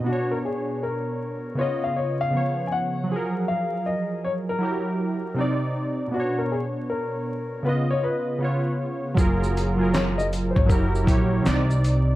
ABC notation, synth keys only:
X:1
M:4/4
L:1/16
Q:"Swing 16ths" 1/4=79
K:F#
V:1 name="Synth keys"
[B,,B,=Dc]8 [C,B,E^d]4 [C,E,B,c]4 | [E,F,GA]8 [F,=E=GA]4 [=C,=C_E=d]4 | [B,,B,=Dc]8 [C,B,E^d]4 [C,B,Ec]4 | [F,EGA]2 z [F,EGA]4- [F,EGA] [F,=E=GA]2 [F,EGc]2 [=C,=C_E=d]3 z |]